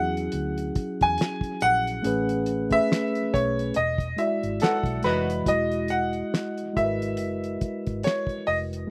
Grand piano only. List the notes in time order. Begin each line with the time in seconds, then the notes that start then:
Already playing: F#5
1.02 G#5
1.62 F#5
2.72 E5
3.34 C#5
3.76 D#5
4.19 E5
4.62 A4 F#5
5.04 B4
5.48 D#5
5.90 F#5
6.77 E5
8.04 C#5
8.47 D#5